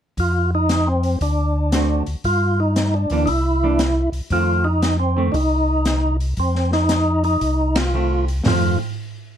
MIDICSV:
0, 0, Header, 1, 5, 480
1, 0, Start_track
1, 0, Tempo, 517688
1, 163, Time_signature, 4, 2, 24, 8
1, 8692, End_track
2, 0, Start_track
2, 0, Title_t, "Tonewheel organ"
2, 0, Program_c, 0, 16
2, 183, Note_on_c, 0, 65, 82
2, 470, Note_off_c, 0, 65, 0
2, 508, Note_on_c, 0, 63, 76
2, 809, Note_on_c, 0, 60, 65
2, 823, Note_off_c, 0, 63, 0
2, 1102, Note_off_c, 0, 60, 0
2, 1132, Note_on_c, 0, 62, 69
2, 1883, Note_off_c, 0, 62, 0
2, 2088, Note_on_c, 0, 65, 78
2, 2410, Note_on_c, 0, 63, 73
2, 2411, Note_off_c, 0, 65, 0
2, 2726, Note_on_c, 0, 62, 77
2, 2732, Note_off_c, 0, 63, 0
2, 3004, Note_off_c, 0, 62, 0
2, 3020, Note_on_c, 0, 63, 57
2, 3043, Note_on_c, 0, 64, 72
2, 3049, Note_off_c, 0, 63, 0
2, 3799, Note_off_c, 0, 64, 0
2, 4011, Note_on_c, 0, 65, 88
2, 4307, Note_on_c, 0, 63, 79
2, 4332, Note_off_c, 0, 65, 0
2, 4608, Note_off_c, 0, 63, 0
2, 4631, Note_on_c, 0, 60, 72
2, 4890, Note_off_c, 0, 60, 0
2, 4931, Note_on_c, 0, 62, 53
2, 4957, Note_on_c, 0, 63, 74
2, 4965, Note_off_c, 0, 62, 0
2, 5718, Note_off_c, 0, 63, 0
2, 5930, Note_on_c, 0, 60, 64
2, 6222, Note_off_c, 0, 60, 0
2, 6242, Note_on_c, 0, 63, 90
2, 6708, Note_off_c, 0, 63, 0
2, 6719, Note_on_c, 0, 63, 94
2, 7207, Note_on_c, 0, 65, 91
2, 7213, Note_off_c, 0, 63, 0
2, 7650, Note_off_c, 0, 65, 0
2, 7862, Note_on_c, 0, 65, 65
2, 8148, Note_off_c, 0, 65, 0
2, 8692, End_track
3, 0, Start_track
3, 0, Title_t, "Hollow-body jazz guitar"
3, 0, Program_c, 1, 26
3, 1604, Note_on_c, 1, 50, 47
3, 1610, Note_on_c, 1, 60, 55
3, 1611, Note_on_c, 1, 57, 50
3, 1616, Note_on_c, 1, 66, 51
3, 1886, Note_off_c, 1, 50, 0
3, 1889, Note_off_c, 1, 57, 0
3, 1889, Note_off_c, 1, 60, 0
3, 1892, Note_off_c, 1, 66, 0
3, 2887, Note_on_c, 1, 52, 59
3, 2894, Note_on_c, 1, 58, 59
3, 2897, Note_on_c, 1, 62, 62
3, 3026, Note_off_c, 1, 52, 0
3, 3030, Note_off_c, 1, 58, 0
3, 3031, Note_off_c, 1, 62, 0
3, 3367, Note_on_c, 1, 52, 49
3, 3375, Note_on_c, 1, 58, 47
3, 3375, Note_on_c, 1, 62, 56
3, 3506, Note_off_c, 1, 52, 0
3, 3510, Note_off_c, 1, 58, 0
3, 3510, Note_off_c, 1, 62, 0
3, 4003, Note_on_c, 1, 51, 56
3, 4008, Note_on_c, 1, 60, 67
3, 4009, Note_on_c, 1, 57, 54
3, 4284, Note_off_c, 1, 51, 0
3, 4287, Note_off_c, 1, 57, 0
3, 4287, Note_off_c, 1, 60, 0
3, 4790, Note_on_c, 1, 51, 59
3, 4800, Note_on_c, 1, 57, 64
3, 4802, Note_on_c, 1, 60, 60
3, 4938, Note_off_c, 1, 51, 0
3, 4943, Note_off_c, 1, 57, 0
3, 4944, Note_off_c, 1, 60, 0
3, 7362, Note_on_c, 1, 51, 42
3, 7369, Note_on_c, 1, 57, 55
3, 7372, Note_on_c, 1, 60, 53
3, 7647, Note_off_c, 1, 51, 0
3, 7651, Note_off_c, 1, 57, 0
3, 7653, Note_off_c, 1, 60, 0
3, 7846, Note_on_c, 1, 51, 57
3, 7856, Note_on_c, 1, 57, 54
3, 7860, Note_on_c, 1, 60, 59
3, 8130, Note_off_c, 1, 51, 0
3, 8135, Note_off_c, 1, 57, 0
3, 8137, Note_off_c, 1, 60, 0
3, 8692, End_track
4, 0, Start_track
4, 0, Title_t, "Tonewheel organ"
4, 0, Program_c, 2, 16
4, 160, Note_on_c, 2, 41, 72
4, 1081, Note_off_c, 2, 41, 0
4, 1124, Note_on_c, 2, 38, 76
4, 1880, Note_off_c, 2, 38, 0
4, 1920, Note_on_c, 2, 38, 32
4, 2000, Note_off_c, 2, 38, 0
4, 2083, Note_on_c, 2, 43, 79
4, 2838, Note_off_c, 2, 43, 0
4, 2875, Note_on_c, 2, 38, 59
4, 3025, Note_off_c, 2, 38, 0
4, 3035, Note_on_c, 2, 36, 86
4, 3794, Note_off_c, 2, 36, 0
4, 3823, Note_on_c, 2, 36, 34
4, 3907, Note_off_c, 2, 36, 0
4, 3990, Note_on_c, 2, 41, 75
4, 4916, Note_off_c, 2, 41, 0
4, 4950, Note_on_c, 2, 36, 82
4, 5877, Note_off_c, 2, 36, 0
4, 5908, Note_on_c, 2, 41, 75
4, 6838, Note_off_c, 2, 41, 0
4, 6876, Note_on_c, 2, 36, 78
4, 7803, Note_off_c, 2, 36, 0
4, 7840, Note_on_c, 2, 41, 81
4, 8137, Note_off_c, 2, 41, 0
4, 8692, End_track
5, 0, Start_track
5, 0, Title_t, "Drums"
5, 162, Note_on_c, 9, 36, 28
5, 163, Note_on_c, 9, 46, 39
5, 255, Note_off_c, 9, 36, 0
5, 256, Note_off_c, 9, 46, 0
5, 643, Note_on_c, 9, 42, 46
5, 644, Note_on_c, 9, 38, 60
5, 735, Note_off_c, 9, 42, 0
5, 737, Note_off_c, 9, 38, 0
5, 958, Note_on_c, 9, 46, 31
5, 1051, Note_off_c, 9, 46, 0
5, 1121, Note_on_c, 9, 36, 33
5, 1122, Note_on_c, 9, 46, 42
5, 1214, Note_off_c, 9, 36, 0
5, 1214, Note_off_c, 9, 46, 0
5, 1597, Note_on_c, 9, 42, 51
5, 1599, Note_on_c, 9, 38, 63
5, 1690, Note_off_c, 9, 42, 0
5, 1692, Note_off_c, 9, 38, 0
5, 1914, Note_on_c, 9, 46, 34
5, 2007, Note_off_c, 9, 46, 0
5, 2079, Note_on_c, 9, 46, 39
5, 2080, Note_on_c, 9, 36, 29
5, 2171, Note_off_c, 9, 46, 0
5, 2173, Note_off_c, 9, 36, 0
5, 2559, Note_on_c, 9, 42, 48
5, 2561, Note_on_c, 9, 38, 58
5, 2652, Note_off_c, 9, 42, 0
5, 2654, Note_off_c, 9, 38, 0
5, 2872, Note_on_c, 9, 46, 33
5, 2965, Note_off_c, 9, 46, 0
5, 3032, Note_on_c, 9, 46, 41
5, 3035, Note_on_c, 9, 36, 29
5, 3125, Note_off_c, 9, 46, 0
5, 3128, Note_off_c, 9, 36, 0
5, 3514, Note_on_c, 9, 42, 47
5, 3516, Note_on_c, 9, 38, 67
5, 3607, Note_off_c, 9, 42, 0
5, 3608, Note_off_c, 9, 38, 0
5, 3830, Note_on_c, 9, 46, 34
5, 3922, Note_off_c, 9, 46, 0
5, 3990, Note_on_c, 9, 46, 39
5, 3992, Note_on_c, 9, 36, 30
5, 4082, Note_off_c, 9, 46, 0
5, 4085, Note_off_c, 9, 36, 0
5, 4473, Note_on_c, 9, 42, 46
5, 4475, Note_on_c, 9, 38, 61
5, 4566, Note_off_c, 9, 42, 0
5, 4568, Note_off_c, 9, 38, 0
5, 4951, Note_on_c, 9, 36, 32
5, 4953, Note_on_c, 9, 46, 45
5, 5044, Note_off_c, 9, 36, 0
5, 5046, Note_off_c, 9, 46, 0
5, 5427, Note_on_c, 9, 42, 48
5, 5429, Note_on_c, 9, 38, 62
5, 5520, Note_off_c, 9, 42, 0
5, 5522, Note_off_c, 9, 38, 0
5, 5752, Note_on_c, 9, 46, 34
5, 5845, Note_off_c, 9, 46, 0
5, 5904, Note_on_c, 9, 46, 39
5, 5910, Note_on_c, 9, 36, 31
5, 5997, Note_off_c, 9, 46, 0
5, 6003, Note_off_c, 9, 36, 0
5, 6076, Note_on_c, 9, 38, 27
5, 6169, Note_off_c, 9, 38, 0
5, 6233, Note_on_c, 9, 38, 37
5, 6325, Note_off_c, 9, 38, 0
5, 6388, Note_on_c, 9, 42, 50
5, 6390, Note_on_c, 9, 38, 60
5, 6481, Note_off_c, 9, 42, 0
5, 6483, Note_off_c, 9, 38, 0
5, 6711, Note_on_c, 9, 46, 34
5, 6804, Note_off_c, 9, 46, 0
5, 6873, Note_on_c, 9, 46, 43
5, 6875, Note_on_c, 9, 36, 32
5, 6965, Note_off_c, 9, 46, 0
5, 6968, Note_off_c, 9, 36, 0
5, 7191, Note_on_c, 9, 51, 65
5, 7193, Note_on_c, 9, 38, 74
5, 7284, Note_off_c, 9, 51, 0
5, 7286, Note_off_c, 9, 38, 0
5, 7680, Note_on_c, 9, 46, 36
5, 7773, Note_off_c, 9, 46, 0
5, 7843, Note_on_c, 9, 38, 82
5, 7843, Note_on_c, 9, 43, 85
5, 7843, Note_on_c, 9, 46, 74
5, 7935, Note_off_c, 9, 38, 0
5, 7935, Note_off_c, 9, 43, 0
5, 7935, Note_off_c, 9, 46, 0
5, 8692, End_track
0, 0, End_of_file